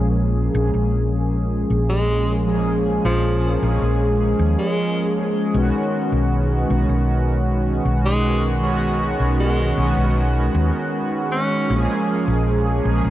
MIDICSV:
0, 0, Header, 1, 4, 480
1, 0, Start_track
1, 0, Tempo, 769231
1, 1541, Time_signature, 4, 2, 24, 8
1, 8174, End_track
2, 0, Start_track
2, 0, Title_t, "Analog polysynth"
2, 0, Program_c, 0, 90
2, 0, Control_c, 0, 64, 127
2, 0, Note_on_c, 0, 53, 99
2, 0, Note_on_c, 0, 56, 92
2, 0, Note_on_c, 0, 58, 93
2, 0, Note_on_c, 0, 61, 95
2, 0, Note_on_c, 0, 68, 108
2, 306, Note_off_c, 0, 53, 0
2, 308, Note_off_c, 0, 56, 0
2, 311, Note_off_c, 0, 58, 0
2, 313, Note_off_c, 0, 61, 0
2, 315, Note_off_c, 0, 68, 0
2, 329, Note_on_c, 0, 53, 86
2, 335, Note_on_c, 0, 56, 80
2, 338, Note_on_c, 0, 58, 77
2, 343, Note_on_c, 0, 61, 79
2, 348, Note_on_c, 0, 68, 98
2, 1506, Note_off_c, 0, 53, 0
2, 1509, Note_off_c, 0, 56, 0
2, 1511, Note_off_c, 0, 58, 0
2, 1513, Note_off_c, 0, 61, 0
2, 1515, Note_off_c, 0, 68, 0
2, 1530, Note_on_c, 0, 53, 99
2, 1534, Note_on_c, 0, 56, 88
2, 1539, Note_on_c, 0, 58, 92
2, 1544, Note_on_c, 0, 61, 88
2, 1549, Note_on_c, 0, 68, 109
2, 2227, Note_off_c, 0, 53, 0
2, 2229, Note_off_c, 0, 56, 0
2, 2231, Note_off_c, 0, 58, 0
2, 2234, Note_off_c, 0, 61, 0
2, 2236, Note_off_c, 0, 68, 0
2, 2253, Note_on_c, 0, 53, 92
2, 2255, Note_on_c, 0, 56, 84
2, 2258, Note_on_c, 0, 58, 85
2, 2261, Note_on_c, 0, 61, 86
2, 2263, Note_on_c, 0, 68, 104
2, 2439, Note_off_c, 0, 53, 0
2, 2440, Note_off_c, 0, 56, 0
2, 2442, Note_off_c, 0, 58, 0
2, 2443, Note_off_c, 0, 61, 0
2, 2444, Note_off_c, 0, 68, 0
2, 3450, Note_on_c, 0, 51, 101
2, 3455, Note_on_c, 0, 56, 91
2, 3458, Note_on_c, 0, 59, 92
2, 3464, Note_on_c, 0, 61, 93
2, 3469, Note_on_c, 0, 66, 111
2, 3470, Control_c, 0, 64, 0
2, 3583, Control_c, 0, 64, 127
2, 4146, Note_off_c, 0, 51, 0
2, 4149, Note_off_c, 0, 56, 0
2, 4151, Note_off_c, 0, 59, 0
2, 4153, Note_off_c, 0, 61, 0
2, 4156, Note_off_c, 0, 66, 0
2, 4171, Note_on_c, 0, 51, 91
2, 4174, Note_on_c, 0, 56, 77
2, 4179, Note_on_c, 0, 59, 83
2, 4185, Note_on_c, 0, 61, 79
2, 4190, Note_on_c, 0, 66, 97
2, 5347, Note_off_c, 0, 51, 0
2, 5349, Note_off_c, 0, 56, 0
2, 5351, Note_off_c, 0, 59, 0
2, 5354, Note_off_c, 0, 61, 0
2, 5356, Note_off_c, 0, 66, 0
2, 5370, Note_on_c, 0, 51, 100
2, 5374, Note_on_c, 0, 56, 88
2, 5378, Note_on_c, 0, 59, 92
2, 5383, Note_on_c, 0, 61, 92
2, 5388, Note_on_c, 0, 66, 108
2, 6066, Note_off_c, 0, 51, 0
2, 6069, Note_off_c, 0, 56, 0
2, 6071, Note_off_c, 0, 59, 0
2, 6073, Note_off_c, 0, 61, 0
2, 6075, Note_off_c, 0, 66, 0
2, 6095, Note_on_c, 0, 51, 98
2, 6097, Note_on_c, 0, 56, 88
2, 6100, Note_on_c, 0, 59, 88
2, 6102, Note_on_c, 0, 61, 85
2, 6104, Note_on_c, 0, 66, 106
2, 6280, Note_off_c, 0, 51, 0
2, 6281, Note_off_c, 0, 56, 0
2, 6283, Note_off_c, 0, 59, 0
2, 6284, Note_off_c, 0, 61, 0
2, 6285, Note_off_c, 0, 66, 0
2, 7290, Note_on_c, 0, 53, 98
2, 7295, Note_on_c, 0, 56, 91
2, 7299, Note_on_c, 0, 58, 90
2, 7303, Note_on_c, 0, 61, 94
2, 7308, Control_c, 0, 64, 0
2, 7309, Note_on_c, 0, 68, 108
2, 7401, Control_c, 0, 64, 127
2, 7987, Note_off_c, 0, 53, 0
2, 7989, Note_off_c, 0, 56, 0
2, 7991, Note_off_c, 0, 58, 0
2, 7993, Note_off_c, 0, 61, 0
2, 7996, Note_off_c, 0, 68, 0
2, 8009, Note_on_c, 0, 53, 86
2, 8013, Note_on_c, 0, 56, 78
2, 8019, Note_on_c, 0, 58, 81
2, 8023, Note_on_c, 0, 61, 81
2, 8027, Note_on_c, 0, 68, 95
2, 8174, Note_off_c, 0, 53, 0
2, 8174, Note_off_c, 0, 56, 0
2, 8174, Note_off_c, 0, 58, 0
2, 8174, Note_off_c, 0, 61, 0
2, 8174, Note_off_c, 0, 68, 0
2, 8174, End_track
3, 0, Start_track
3, 0, Title_t, "Tenor saxophone"
3, 0, Program_c, 1, 66
3, 1181, Note_on_c, 1, 56, 97
3, 1469, Note_off_c, 1, 56, 0
3, 1904, Note_on_c, 1, 53, 93
3, 2262, Note_off_c, 1, 53, 0
3, 2861, Note_on_c, 1, 56, 96
3, 3221, Note_off_c, 1, 56, 0
3, 5024, Note_on_c, 1, 56, 97
3, 5310, Note_off_c, 1, 56, 0
3, 5865, Note_on_c, 1, 56, 90
3, 6151, Note_off_c, 1, 56, 0
3, 7062, Note_on_c, 1, 61, 92
3, 7349, Note_off_c, 1, 61, 0
3, 8174, End_track
4, 0, Start_track
4, 0, Title_t, "Fingered electric bass"
4, 0, Program_c, 2, 33
4, 0, Note_on_c, 2, 34, 89
4, 298, Note_off_c, 2, 34, 0
4, 341, Note_on_c, 2, 34, 102
4, 434, Note_off_c, 2, 34, 0
4, 461, Note_on_c, 2, 34, 80
4, 1018, Note_off_c, 2, 34, 0
4, 1063, Note_on_c, 2, 34, 80
4, 1859, Note_off_c, 2, 34, 0
4, 1901, Note_on_c, 2, 34, 87
4, 2218, Note_off_c, 2, 34, 0
4, 2262, Note_on_c, 2, 34, 102
4, 2355, Note_off_c, 2, 34, 0
4, 2381, Note_on_c, 2, 34, 83
4, 2698, Note_off_c, 2, 34, 0
4, 2740, Note_on_c, 2, 39, 102
4, 2834, Note_off_c, 2, 39, 0
4, 3460, Note_on_c, 2, 35, 98
4, 3553, Note_off_c, 2, 35, 0
4, 3820, Note_on_c, 2, 35, 83
4, 4137, Note_off_c, 2, 35, 0
4, 4181, Note_on_c, 2, 35, 97
4, 4274, Note_off_c, 2, 35, 0
4, 4299, Note_on_c, 2, 35, 83
4, 4857, Note_off_c, 2, 35, 0
4, 4901, Note_on_c, 2, 35, 82
4, 5698, Note_off_c, 2, 35, 0
4, 5740, Note_on_c, 2, 35, 88
4, 6057, Note_off_c, 2, 35, 0
4, 6101, Note_on_c, 2, 35, 100
4, 6194, Note_off_c, 2, 35, 0
4, 6220, Note_on_c, 2, 35, 84
4, 6537, Note_off_c, 2, 35, 0
4, 6581, Note_on_c, 2, 39, 96
4, 6674, Note_off_c, 2, 39, 0
4, 7301, Note_on_c, 2, 34, 99
4, 7394, Note_off_c, 2, 34, 0
4, 7661, Note_on_c, 2, 34, 90
4, 7978, Note_off_c, 2, 34, 0
4, 8020, Note_on_c, 2, 34, 98
4, 8113, Note_off_c, 2, 34, 0
4, 8140, Note_on_c, 2, 34, 83
4, 8174, Note_off_c, 2, 34, 0
4, 8174, End_track
0, 0, End_of_file